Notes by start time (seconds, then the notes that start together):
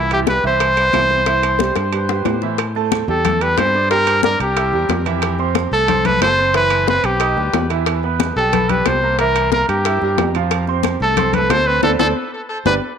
Already playing: C2 E4
0.11 E3 E4 G4 E5, high bongo, high conga, high timbale
0.27 G3 G4 B4, high bongo, high conga, high timbale, low timbale
0.44 C2 E3 E4 C5 E5, high conga
0.60 high bongo, high conga, high timbale
0.77 G3 G4 B4, high bongo, high conga, high timbale
0.93 C2 E3 E4 E5, high bongo, low bongo, high conga, high timbale, low timbale
1.10 high bongo, high conga
1.26 E3 E4 E5, high bongo, high conga, high timbale
1.43 high bongo, high conga, high timbale
1.59 G3 G4 C5, high bongo, high conga, low timbale
1.76 G2, high bongo, high conga, high timbale
1.92 G3 G4 B4, high conga, high timbale
2.09 G3 G4 B4, high bongo, high conga
2.25 A2, low bongo, high conga, high timbale, low timbale
2.42 E3 E4 E5, low bongo
2.58 high bongo, high conga, high timbale
2.75 A3 A4 A5, high conga
2.92 high bongo, high conga, high timbale, low timbale
3.08 E2 G3 G4 A4 G5, high conga
3.25 A3 A4 A5, high bongo, high conga, low conga, high timbale
3.41 G3 G4 B4 G5, high conga, high timbale
3.58 G2 C5, high bongo, low bongo, high conga, high timbale, low timbale
3.74 D4 D5 D6, high conga
3.90 G3 G4 A#4 G5, high bongo, high conga, high timbale
4.07 high bongo, high conga, high timbale
4.23 D4 A#4 D5 D6, high bongo, high conga, low timbale
4.40 C2 G4, high bongo, high conga, high timbale
4.56 E4 E5 E6, high bongo, high conga, high timbale
4.73 E2 G3 G4 G5, high conga
4.89 F2, high bongo, low bongo, high conga, high timbale, low timbale
5.05 E3 E4 E5, high bongo, high conga, high timbale
5.22 high bongo, high conga, high timbale
5.39 C4 C5 C6, high conga
5.55 high bongo, high conga, high timbale, low timbale
5.71 C2 A3 A4 A5, high conga
5.88 C4 C5 C6, high bongo, high conga, low conga, high timbale
6.05 A3 A4 B4 A5, high conga, low conga, high timbale
6.21 F#1 C5, high bongo, low bongo, high conga, high timbale, low timbale
6.38 C4 C5 C6, high conga
6.54 E3 E4 B4 E5, high bongo, high conga, high timbale
6.70 high bongo, high conga, high timbale
6.87 C4 B4 C5 C6, high bongo, high conga, low timbale
7.03 B1 G4, high bongo, high conga, high timbale
7.20 D#4 D#5 D#6, high bongo, high conga, high timbale
7.37 D2 G3 G4 G5, high conga
7.53 E2, high bongo, low bongo, high conga, high timbale, low timbale
7.70 E3 E4 E5, high bongo, high timbale
7.86 high bongo, high conga, high timbale
8.03 B3 B4 B5, high conga
8.20 high bongo, high conga, high timbale, low timbale
8.36 B1 G3 G4 A4 G5, high conga
8.53 B3 B4 B5, high bongo, high conga, low conga, high timbale
8.69 G3 G4 B4 G5, high conga, low conga, high timbale
8.86 C2 C5, high bongo, low bongo, high conga, high timbale, low timbale
9.02 A#3 A#4 A#5, high conga
9.19 E3 E4 A#4 E5, high bongo, high conga, high timbale
9.35 high bongo, high conga, high timbale
9.52 A#3 A#4 A#5, high bongo, high conga, low timbale
9.69 G2 G4, high bongo, high conga, high timbale
9.85 E4 E5 E6, high bongo, high conga, high timbale
10.02 G2 G3 G4 G5, high conga
10.18 F2, high bongo, low bongo, high conga, high timbale, low timbale
10.35 F3 F4 F5, high bongo, high conga, high timbale
10.51 high bongo, high conga, high timbale
10.67 C4 C5 C6, high conga
10.83 high bongo, high conga, high timbale, low timbale
11.00 C2 A3 A4 A5, high conga
11.17 C4 C5 C6, high bongo, high conga, low conga, high timbale
11.33 A3 A4 B4 A5, high conga, low conga, high timbale
11.50 D2 C5, high bongo, low bongo, high conga, high timbale, low timbale
11.66 C4 B4 C5 C6, high conga
11.83 D2 A4 C5 D5, low bongo, high conga, high timbale
11.99 D2 A4 C5 D5, low bongo, high conga, high timbale
12.65 G1 G4 B4 D5, low bongo, high conga, high timbale